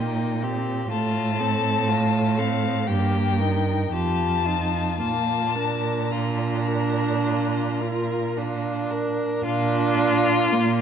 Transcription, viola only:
0, 0, Header, 1, 2, 480
1, 0, Start_track
1, 0, Key_signature, -2, "major"
1, 0, Tempo, 975610
1, 449, Time_signature, 4, 2, 24, 8
1, 931, Tempo, 1023891
1, 1891, Tempo, 1067616
1, 2371, Tempo, 1117318
1, 3811, Tempo, 1063830
1, 4918, End_track
2, 0, Start_track
2, 0, Title_t, "Viola"
2, 0, Program_c, 0, 41
2, 0, Note_on_c, 0, 58, 50
2, 209, Note_on_c, 0, 60, 55
2, 217, Note_off_c, 0, 58, 0
2, 439, Note_off_c, 0, 60, 0
2, 442, Note_on_c, 0, 57, 63
2, 691, Note_on_c, 0, 60, 51
2, 698, Note_off_c, 0, 57, 0
2, 930, Note_on_c, 0, 57, 64
2, 937, Note_off_c, 0, 60, 0
2, 1162, Note_on_c, 0, 60, 60
2, 1169, Note_off_c, 0, 57, 0
2, 1397, Note_off_c, 0, 60, 0
2, 1400, Note_on_c, 0, 58, 60
2, 1641, Note_on_c, 0, 63, 52
2, 1648, Note_off_c, 0, 58, 0
2, 1886, Note_off_c, 0, 63, 0
2, 1888, Note_on_c, 0, 65, 54
2, 2124, Note_on_c, 0, 63, 53
2, 2130, Note_off_c, 0, 65, 0
2, 2363, Note_off_c, 0, 63, 0
2, 2366, Note_on_c, 0, 58, 57
2, 2607, Note_on_c, 0, 62, 44
2, 2613, Note_off_c, 0, 58, 0
2, 2847, Note_off_c, 0, 62, 0
2, 2849, Note_on_c, 0, 62, 75
2, 3575, Note_on_c, 0, 65, 61
2, 3582, Note_off_c, 0, 62, 0
2, 3812, Note_on_c, 0, 62, 57
2, 3819, Note_off_c, 0, 65, 0
2, 4301, Note_off_c, 0, 62, 0
2, 4305, Note_on_c, 0, 62, 92
2, 4786, Note_on_c, 0, 58, 72
2, 4793, Note_off_c, 0, 62, 0
2, 4918, Note_off_c, 0, 58, 0
2, 4918, End_track
0, 0, End_of_file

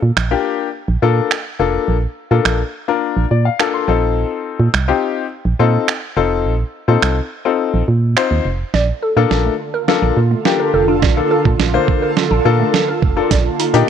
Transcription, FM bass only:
0, 0, Header, 1, 2, 480
1, 0, Start_track
1, 0, Key_signature, -2, "major"
1, 0, Tempo, 571429
1, 1581, Time_signature, 4, 2, 24, 8
1, 11669, End_track
2, 0, Start_track
2, 0, Title_t, "FM bass"
2, 0, Program_c, 0, 39
2, 21, Note_on_c, 0, 46, 95
2, 98, Note_off_c, 0, 46, 0
2, 141, Note_on_c, 0, 34, 95
2, 294, Note_off_c, 0, 34, 0
2, 742, Note_on_c, 0, 34, 100
2, 818, Note_off_c, 0, 34, 0
2, 861, Note_on_c, 0, 46, 91
2, 1014, Note_off_c, 0, 46, 0
2, 1341, Note_on_c, 0, 29, 77
2, 1494, Note_off_c, 0, 29, 0
2, 1581, Note_on_c, 0, 34, 100
2, 1734, Note_off_c, 0, 34, 0
2, 1941, Note_on_c, 0, 46, 96
2, 2018, Note_off_c, 0, 46, 0
2, 2060, Note_on_c, 0, 34, 100
2, 2214, Note_off_c, 0, 34, 0
2, 2660, Note_on_c, 0, 34, 99
2, 2737, Note_off_c, 0, 34, 0
2, 2781, Note_on_c, 0, 46, 91
2, 2934, Note_off_c, 0, 46, 0
2, 3260, Note_on_c, 0, 34, 97
2, 3567, Note_off_c, 0, 34, 0
2, 3860, Note_on_c, 0, 46, 100
2, 3937, Note_off_c, 0, 46, 0
2, 3981, Note_on_c, 0, 36, 102
2, 4134, Note_off_c, 0, 36, 0
2, 4580, Note_on_c, 0, 34, 99
2, 4657, Note_off_c, 0, 34, 0
2, 4700, Note_on_c, 0, 46, 97
2, 4854, Note_off_c, 0, 46, 0
2, 5181, Note_on_c, 0, 29, 93
2, 5421, Note_on_c, 0, 34, 116
2, 5433, Note_off_c, 0, 29, 0
2, 5574, Note_off_c, 0, 34, 0
2, 5781, Note_on_c, 0, 46, 97
2, 5857, Note_off_c, 0, 46, 0
2, 5901, Note_on_c, 0, 36, 89
2, 6054, Note_off_c, 0, 36, 0
2, 6501, Note_on_c, 0, 34, 98
2, 6578, Note_off_c, 0, 34, 0
2, 6620, Note_on_c, 0, 46, 88
2, 6850, Note_off_c, 0, 46, 0
2, 6981, Note_on_c, 0, 39, 88
2, 7057, Note_off_c, 0, 39, 0
2, 7101, Note_on_c, 0, 29, 88
2, 7254, Note_off_c, 0, 29, 0
2, 7340, Note_on_c, 0, 34, 115
2, 7493, Note_off_c, 0, 34, 0
2, 7700, Note_on_c, 0, 46, 93
2, 7777, Note_off_c, 0, 46, 0
2, 7820, Note_on_c, 0, 34, 92
2, 7973, Note_off_c, 0, 34, 0
2, 8420, Note_on_c, 0, 34, 98
2, 8497, Note_off_c, 0, 34, 0
2, 8541, Note_on_c, 0, 46, 96
2, 8694, Note_off_c, 0, 46, 0
2, 9021, Note_on_c, 0, 29, 83
2, 9261, Note_on_c, 0, 34, 114
2, 9273, Note_off_c, 0, 29, 0
2, 9414, Note_off_c, 0, 34, 0
2, 9621, Note_on_c, 0, 46, 98
2, 9698, Note_off_c, 0, 46, 0
2, 9741, Note_on_c, 0, 34, 95
2, 9894, Note_off_c, 0, 34, 0
2, 10341, Note_on_c, 0, 34, 98
2, 10417, Note_off_c, 0, 34, 0
2, 10461, Note_on_c, 0, 46, 94
2, 10614, Note_off_c, 0, 46, 0
2, 10940, Note_on_c, 0, 29, 91
2, 11094, Note_off_c, 0, 29, 0
2, 11181, Note_on_c, 0, 34, 114
2, 11334, Note_off_c, 0, 34, 0
2, 11541, Note_on_c, 0, 46, 99
2, 11617, Note_off_c, 0, 46, 0
2, 11669, End_track
0, 0, End_of_file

